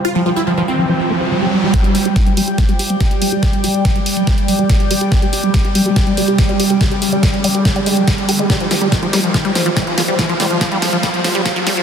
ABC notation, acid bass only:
X:1
M:4/4
L:1/16
Q:1/4=142
K:Fdor
V:1 name="Acid bass" clef=bass
F F, F, F F, F, F F, F, F =A, F =E, G, C E, | G, G G, G, G G, G, G G, G, G G, G, G G, G, | G G, G, G G, G, G G, G, G G, G, G G, G, G | G, G, G G, G, G G, G, G G, G, G G, G, G G, |
G, G G, G, G G, G, G G, G, A, F, G, z G A, | G, F, F, G, F, F, G, F, F, G, F, F, G, F, F, G, | F, F, G, F, F, G, F, F, G, F, F, G, F, F, G, F, |]